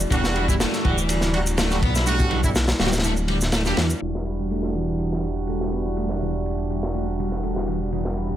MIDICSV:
0, 0, Header, 1, 6, 480
1, 0, Start_track
1, 0, Key_signature, 1, "minor"
1, 0, Tempo, 487805
1, 114, Time_signature, 4, 2, 24, 8
1, 8231, End_track
2, 0, Start_track
2, 0, Title_t, "Analog synth pad"
2, 0, Program_c, 0, 89
2, 0, Note_on_c, 0, 55, 82
2, 0, Note_on_c, 0, 62, 76
2, 0, Note_on_c, 0, 64, 75
2, 0, Note_on_c, 0, 66, 77
2, 0, Note_on_c, 0, 74, 93
2, 3911, Note_off_c, 0, 62, 0
2, 3911, Note_off_c, 0, 66, 0
2, 3913, Note_off_c, 0, 64, 0
2, 3914, Note_off_c, 0, 55, 0
2, 3940, Note_off_c, 0, 74, 0
2, 3954, Note_on_c, 0, 55, 72
2, 3954, Note_on_c, 0, 62, 77
2, 3954, Note_on_c, 0, 76, 90
2, 3956, Note_on_c, 0, 66, 74
2, 7780, Note_off_c, 0, 76, 0
2, 7797, Note_on_c, 0, 74, 92
2, 8231, Note_off_c, 0, 55, 0
2, 8231, Note_off_c, 0, 62, 0
2, 8231, Note_off_c, 0, 66, 0
2, 8231, Note_off_c, 0, 74, 0
2, 8231, End_track
3, 0, Start_track
3, 0, Title_t, "Horn section"
3, 0, Program_c, 1, 61
3, 113, Note_on_c, 1, 55, 99
3, 113, Note_on_c, 1, 62, 91
3, 113, Note_on_c, 1, 66, 110
3, 450, Note_off_c, 1, 55, 0
3, 450, Note_off_c, 1, 62, 0
3, 450, Note_off_c, 1, 66, 0
3, 479, Note_on_c, 1, 64, 103
3, 480, Note_on_c, 1, 55, 87
3, 480, Note_on_c, 1, 62, 82
3, 548, Note_off_c, 1, 55, 0
3, 548, Note_off_c, 1, 64, 0
3, 549, Note_off_c, 1, 62, 0
3, 829, Note_on_c, 1, 55, 76
3, 829, Note_on_c, 1, 62, 68
3, 830, Note_on_c, 1, 66, 82
3, 954, Note_off_c, 1, 55, 0
3, 954, Note_off_c, 1, 62, 0
3, 954, Note_off_c, 1, 66, 0
3, 1310, Note_on_c, 1, 55, 83
3, 1310, Note_on_c, 1, 62, 78
3, 1310, Note_on_c, 1, 66, 92
3, 1388, Note_off_c, 1, 55, 0
3, 1388, Note_off_c, 1, 62, 0
3, 1389, Note_off_c, 1, 66, 0
3, 1676, Note_on_c, 1, 66, 93
3, 1677, Note_on_c, 1, 55, 83
3, 1677, Note_on_c, 1, 62, 77
3, 1746, Note_off_c, 1, 66, 0
3, 1747, Note_off_c, 1, 55, 0
3, 1747, Note_off_c, 1, 62, 0
3, 2029, Note_on_c, 1, 62, 91
3, 2030, Note_on_c, 1, 55, 102
3, 2032, Note_on_c, 1, 66, 114
3, 2368, Note_off_c, 1, 55, 0
3, 2368, Note_off_c, 1, 62, 0
3, 2369, Note_off_c, 1, 66, 0
3, 2394, Note_on_c, 1, 62, 82
3, 2395, Note_on_c, 1, 55, 90
3, 2396, Note_on_c, 1, 64, 102
3, 2466, Note_off_c, 1, 55, 0
3, 2466, Note_off_c, 1, 62, 0
3, 2466, Note_off_c, 1, 64, 0
3, 2751, Note_on_c, 1, 55, 78
3, 2752, Note_on_c, 1, 62, 66
3, 2753, Note_on_c, 1, 66, 79
3, 2875, Note_off_c, 1, 55, 0
3, 2875, Note_off_c, 1, 62, 0
3, 2875, Note_off_c, 1, 66, 0
3, 3597, Note_on_c, 1, 55, 78
3, 3597, Note_on_c, 1, 62, 71
3, 3599, Note_on_c, 1, 67, 88
3, 3708, Note_off_c, 1, 55, 0
3, 3708, Note_off_c, 1, 62, 0
3, 3709, Note_off_c, 1, 67, 0
3, 3953, Note_on_c, 1, 62, 71
3, 3953, Note_on_c, 1, 66, 86
3, 3954, Note_on_c, 1, 55, 77
3, 7766, Note_off_c, 1, 62, 0
3, 7766, Note_off_c, 1, 66, 0
3, 7767, Note_off_c, 1, 55, 0
3, 7796, Note_on_c, 1, 66, 87
3, 7797, Note_on_c, 1, 55, 81
3, 7797, Note_on_c, 1, 62, 70
3, 8231, Note_off_c, 1, 55, 0
3, 8231, Note_off_c, 1, 62, 0
3, 8231, Note_off_c, 1, 66, 0
3, 8231, End_track
4, 0, Start_track
4, 0, Title_t, "Overdriven electric guitar"
4, 0, Program_c, 2, 29
4, 114, Note_on_c, 2, 52, 84
4, 193, Note_off_c, 2, 52, 0
4, 357, Note_on_c, 2, 64, 74
4, 470, Note_off_c, 2, 64, 0
4, 482, Note_on_c, 2, 55, 76
4, 524, Note_off_c, 2, 55, 0
4, 599, Note_on_c, 2, 57, 84
4, 825, Note_off_c, 2, 57, 0
4, 838, Note_on_c, 2, 52, 95
4, 1305, Note_off_c, 2, 52, 0
4, 1559, Note_on_c, 2, 57, 78
4, 1785, Note_off_c, 2, 57, 0
4, 1799, Note_on_c, 2, 59, 101
4, 1911, Note_off_c, 2, 59, 0
4, 1927, Note_on_c, 2, 64, 76
4, 2026, Note_off_c, 2, 64, 0
4, 2041, Note_on_c, 2, 57, 101
4, 2116, Note_off_c, 2, 57, 0
4, 2279, Note_on_c, 2, 52, 78
4, 2355, Note_off_c, 2, 52, 0
4, 2759, Note_on_c, 2, 55, 97
4, 2835, Note_off_c, 2, 55, 0
4, 2998, Note_on_c, 2, 57, 98
4, 3075, Note_off_c, 2, 57, 0
4, 3237, Note_on_c, 2, 55, 78
4, 3314, Note_off_c, 2, 55, 0
4, 3478, Note_on_c, 2, 57, 79
4, 3555, Note_off_c, 2, 57, 0
4, 3605, Note_on_c, 2, 55, 77
4, 3705, Note_off_c, 2, 55, 0
4, 3714, Note_on_c, 2, 52, 77
4, 3793, Note_off_c, 2, 52, 0
4, 3955, Note_on_c, 2, 52, 74
4, 4033, Note_off_c, 2, 52, 0
4, 4196, Note_on_c, 2, 64, 69
4, 4309, Note_off_c, 2, 64, 0
4, 4323, Note_on_c, 2, 55, 66
4, 4364, Note_off_c, 2, 55, 0
4, 4437, Note_on_c, 2, 57, 74
4, 4664, Note_off_c, 2, 57, 0
4, 4676, Note_on_c, 2, 52, 88
4, 5144, Note_off_c, 2, 52, 0
4, 5396, Note_on_c, 2, 57, 70
4, 5624, Note_off_c, 2, 57, 0
4, 5635, Note_on_c, 2, 59, 91
4, 5748, Note_off_c, 2, 59, 0
4, 5762, Note_on_c, 2, 64, 69
4, 5863, Note_off_c, 2, 64, 0
4, 5875, Note_on_c, 2, 57, 90
4, 5953, Note_off_c, 2, 57, 0
4, 6116, Note_on_c, 2, 52, 68
4, 6194, Note_off_c, 2, 52, 0
4, 6594, Note_on_c, 2, 55, 84
4, 6673, Note_off_c, 2, 55, 0
4, 6835, Note_on_c, 2, 57, 88
4, 6913, Note_off_c, 2, 57, 0
4, 7073, Note_on_c, 2, 55, 69
4, 7152, Note_off_c, 2, 55, 0
4, 7316, Note_on_c, 2, 57, 72
4, 7394, Note_off_c, 2, 57, 0
4, 7443, Note_on_c, 2, 55, 68
4, 7544, Note_off_c, 2, 55, 0
4, 7556, Note_on_c, 2, 52, 68
4, 7634, Note_off_c, 2, 52, 0
4, 7800, Note_on_c, 2, 52, 75
4, 7876, Note_off_c, 2, 52, 0
4, 8037, Note_on_c, 2, 64, 69
4, 8150, Note_off_c, 2, 64, 0
4, 8165, Note_on_c, 2, 55, 69
4, 8205, Note_off_c, 2, 55, 0
4, 8231, End_track
5, 0, Start_track
5, 0, Title_t, "Detuned saw bass"
5, 0, Program_c, 3, 39
5, 102, Note_on_c, 3, 28, 96
5, 644, Note_off_c, 3, 28, 0
5, 834, Note_on_c, 3, 26, 108
5, 1790, Note_on_c, 3, 35, 102
5, 1804, Note_off_c, 3, 26, 0
5, 2688, Note_off_c, 3, 35, 0
5, 2749, Note_on_c, 3, 26, 107
5, 3598, Note_on_c, 3, 28, 94
5, 3613, Note_off_c, 3, 26, 0
5, 3673, Note_off_c, 3, 28, 0
5, 3714, Note_on_c, 3, 40, 91
5, 3875, Note_off_c, 3, 40, 0
5, 3954, Note_on_c, 3, 28, 82
5, 8231, Note_off_c, 3, 28, 0
5, 8231, End_track
6, 0, Start_track
6, 0, Title_t, "Drums"
6, 1, Note_on_c, 9, 82, 60
6, 100, Note_off_c, 9, 82, 0
6, 104, Note_on_c, 9, 36, 107
6, 114, Note_on_c, 9, 82, 51
6, 116, Note_on_c, 9, 51, 96
6, 203, Note_off_c, 9, 36, 0
6, 213, Note_off_c, 9, 82, 0
6, 215, Note_off_c, 9, 51, 0
6, 235, Note_on_c, 9, 38, 52
6, 241, Note_on_c, 9, 82, 30
6, 334, Note_off_c, 9, 38, 0
6, 340, Note_off_c, 9, 82, 0
6, 350, Note_on_c, 9, 51, 69
6, 448, Note_off_c, 9, 51, 0
6, 476, Note_on_c, 9, 36, 89
6, 483, Note_on_c, 9, 82, 60
6, 575, Note_off_c, 9, 36, 0
6, 582, Note_off_c, 9, 82, 0
6, 592, Note_on_c, 9, 38, 116
6, 595, Note_on_c, 9, 82, 51
6, 597, Note_on_c, 9, 51, 86
6, 691, Note_off_c, 9, 38, 0
6, 694, Note_off_c, 9, 82, 0
6, 695, Note_off_c, 9, 51, 0
6, 714, Note_on_c, 9, 38, 40
6, 725, Note_on_c, 9, 82, 31
6, 813, Note_off_c, 9, 38, 0
6, 823, Note_off_c, 9, 82, 0
6, 834, Note_on_c, 9, 36, 94
6, 834, Note_on_c, 9, 51, 62
6, 932, Note_off_c, 9, 36, 0
6, 933, Note_off_c, 9, 51, 0
6, 965, Note_on_c, 9, 82, 60
6, 1063, Note_off_c, 9, 82, 0
6, 1071, Note_on_c, 9, 51, 88
6, 1077, Note_on_c, 9, 82, 50
6, 1170, Note_off_c, 9, 51, 0
6, 1175, Note_off_c, 9, 82, 0
6, 1191, Note_on_c, 9, 38, 39
6, 1201, Note_on_c, 9, 82, 30
6, 1289, Note_off_c, 9, 38, 0
6, 1300, Note_off_c, 9, 82, 0
6, 1316, Note_on_c, 9, 51, 70
6, 1414, Note_off_c, 9, 51, 0
6, 1442, Note_on_c, 9, 82, 63
6, 1445, Note_on_c, 9, 51, 45
6, 1540, Note_off_c, 9, 82, 0
6, 1544, Note_off_c, 9, 51, 0
6, 1552, Note_on_c, 9, 51, 81
6, 1554, Note_on_c, 9, 38, 120
6, 1555, Note_on_c, 9, 82, 51
6, 1650, Note_off_c, 9, 51, 0
6, 1652, Note_off_c, 9, 38, 0
6, 1653, Note_off_c, 9, 82, 0
6, 1677, Note_on_c, 9, 38, 40
6, 1683, Note_on_c, 9, 82, 32
6, 1775, Note_off_c, 9, 38, 0
6, 1781, Note_off_c, 9, 82, 0
6, 1791, Note_on_c, 9, 36, 92
6, 1795, Note_on_c, 9, 51, 75
6, 1889, Note_off_c, 9, 36, 0
6, 1894, Note_off_c, 9, 51, 0
6, 1920, Note_on_c, 9, 82, 61
6, 1929, Note_on_c, 9, 38, 42
6, 2019, Note_off_c, 9, 82, 0
6, 2027, Note_off_c, 9, 38, 0
6, 2031, Note_on_c, 9, 82, 53
6, 2040, Note_on_c, 9, 51, 62
6, 2129, Note_off_c, 9, 82, 0
6, 2138, Note_off_c, 9, 51, 0
6, 2159, Note_on_c, 9, 82, 33
6, 2163, Note_on_c, 9, 36, 90
6, 2257, Note_off_c, 9, 82, 0
6, 2261, Note_off_c, 9, 36, 0
6, 2270, Note_on_c, 9, 51, 62
6, 2368, Note_off_c, 9, 51, 0
6, 2399, Note_on_c, 9, 36, 89
6, 2399, Note_on_c, 9, 82, 64
6, 2497, Note_off_c, 9, 36, 0
6, 2497, Note_off_c, 9, 82, 0
6, 2511, Note_on_c, 9, 82, 54
6, 2516, Note_on_c, 9, 38, 106
6, 2519, Note_on_c, 9, 51, 71
6, 2610, Note_off_c, 9, 82, 0
6, 2614, Note_off_c, 9, 38, 0
6, 2618, Note_off_c, 9, 51, 0
6, 2635, Note_on_c, 9, 38, 106
6, 2637, Note_on_c, 9, 82, 32
6, 2642, Note_on_c, 9, 51, 81
6, 2733, Note_off_c, 9, 38, 0
6, 2735, Note_off_c, 9, 82, 0
6, 2741, Note_off_c, 9, 51, 0
6, 2751, Note_on_c, 9, 38, 92
6, 2753, Note_on_c, 9, 51, 63
6, 2818, Note_off_c, 9, 38, 0
6, 2818, Note_off_c, 9, 51, 0
6, 2818, Note_on_c, 9, 38, 83
6, 2818, Note_on_c, 9, 51, 69
6, 2877, Note_off_c, 9, 38, 0
6, 2877, Note_on_c, 9, 38, 79
6, 2879, Note_on_c, 9, 82, 66
6, 2882, Note_off_c, 9, 51, 0
6, 2882, Note_on_c, 9, 51, 67
6, 2931, Note_off_c, 9, 51, 0
6, 2931, Note_on_c, 9, 51, 66
6, 2936, Note_off_c, 9, 38, 0
6, 2936, Note_on_c, 9, 38, 96
6, 2978, Note_off_c, 9, 82, 0
6, 2991, Note_on_c, 9, 82, 54
6, 3029, Note_off_c, 9, 51, 0
6, 3035, Note_off_c, 9, 38, 0
6, 3089, Note_off_c, 9, 82, 0
6, 3116, Note_on_c, 9, 82, 32
6, 3214, Note_off_c, 9, 82, 0
6, 3228, Note_on_c, 9, 51, 71
6, 3327, Note_off_c, 9, 51, 0
6, 3356, Note_on_c, 9, 82, 66
6, 3369, Note_on_c, 9, 38, 40
6, 3455, Note_off_c, 9, 82, 0
6, 3464, Note_on_c, 9, 51, 89
6, 3468, Note_off_c, 9, 38, 0
6, 3469, Note_on_c, 9, 38, 106
6, 3470, Note_on_c, 9, 82, 52
6, 3562, Note_off_c, 9, 51, 0
6, 3567, Note_off_c, 9, 38, 0
6, 3568, Note_off_c, 9, 82, 0
6, 3597, Note_on_c, 9, 82, 32
6, 3600, Note_on_c, 9, 38, 49
6, 3695, Note_off_c, 9, 82, 0
6, 3698, Note_off_c, 9, 38, 0
6, 3709, Note_on_c, 9, 51, 75
6, 3713, Note_on_c, 9, 38, 105
6, 3807, Note_off_c, 9, 51, 0
6, 3812, Note_off_c, 9, 38, 0
6, 3839, Note_on_c, 9, 82, 64
6, 3937, Note_off_c, 9, 82, 0
6, 3954, Note_on_c, 9, 51, 72
6, 4053, Note_off_c, 9, 51, 0
6, 4084, Note_on_c, 9, 38, 46
6, 4182, Note_off_c, 9, 38, 0
6, 4188, Note_on_c, 9, 51, 63
6, 4287, Note_off_c, 9, 51, 0
6, 4432, Note_on_c, 9, 51, 82
6, 4530, Note_off_c, 9, 51, 0
6, 4552, Note_on_c, 9, 38, 38
6, 4650, Note_off_c, 9, 38, 0
6, 4674, Note_on_c, 9, 51, 61
6, 4772, Note_off_c, 9, 51, 0
6, 4916, Note_on_c, 9, 51, 73
6, 5015, Note_off_c, 9, 51, 0
6, 5043, Note_on_c, 9, 38, 36
6, 5141, Note_off_c, 9, 38, 0
6, 5153, Note_on_c, 9, 51, 67
6, 5251, Note_off_c, 9, 51, 0
6, 5276, Note_on_c, 9, 51, 38
6, 5374, Note_off_c, 9, 51, 0
6, 5387, Note_on_c, 9, 51, 73
6, 5486, Note_off_c, 9, 51, 0
6, 5520, Note_on_c, 9, 38, 39
6, 5619, Note_off_c, 9, 38, 0
6, 5630, Note_on_c, 9, 51, 53
6, 5728, Note_off_c, 9, 51, 0
6, 5759, Note_on_c, 9, 51, 38
6, 5857, Note_off_c, 9, 51, 0
6, 5872, Note_on_c, 9, 51, 75
6, 5970, Note_off_c, 9, 51, 0
6, 5994, Note_on_c, 9, 38, 40
6, 6093, Note_off_c, 9, 38, 0
6, 6104, Note_on_c, 9, 51, 60
6, 6202, Note_off_c, 9, 51, 0
6, 6355, Note_on_c, 9, 51, 75
6, 6453, Note_off_c, 9, 51, 0
6, 6478, Note_on_c, 9, 51, 40
6, 6577, Note_off_c, 9, 51, 0
6, 6593, Note_on_c, 9, 51, 56
6, 6691, Note_off_c, 9, 51, 0
6, 6720, Note_on_c, 9, 38, 53
6, 6818, Note_off_c, 9, 38, 0
6, 6831, Note_on_c, 9, 51, 82
6, 6930, Note_off_c, 9, 51, 0
6, 7081, Note_on_c, 9, 51, 65
6, 7179, Note_off_c, 9, 51, 0
6, 7203, Note_on_c, 9, 38, 32
6, 7302, Note_off_c, 9, 38, 0
6, 7316, Note_on_c, 9, 51, 80
6, 7414, Note_off_c, 9, 51, 0
6, 7441, Note_on_c, 9, 38, 48
6, 7539, Note_off_c, 9, 38, 0
6, 7554, Note_on_c, 9, 51, 65
6, 7652, Note_off_c, 9, 51, 0
6, 7797, Note_on_c, 9, 51, 77
6, 7895, Note_off_c, 9, 51, 0
6, 7922, Note_on_c, 9, 38, 50
6, 8020, Note_off_c, 9, 38, 0
6, 8040, Note_on_c, 9, 51, 57
6, 8139, Note_off_c, 9, 51, 0
6, 8231, End_track
0, 0, End_of_file